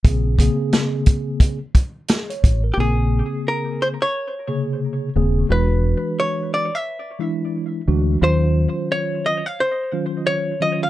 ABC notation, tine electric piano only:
X:1
M:4/4
L:1/16
Q:"Swing 16ths" 1/4=88
K:Bbm
V:1 name="Tine electric piano"
z12 A d2 B- | B z12 z3 | z16 | z16 |]
V:2 name="Tine electric piano"
[D,B,CA]2 [D,B,CA]6 z8 | [D,B,CA]6 z4 [C,D,B,A]4 [D,B,CA]2 | [=E,^G,=D^F]6 z4 [E,G,D=E]4 [E,G,DF]2 | [E,G,DF]6 z4 [E,G,DF]4 [E,G,DF]2 |]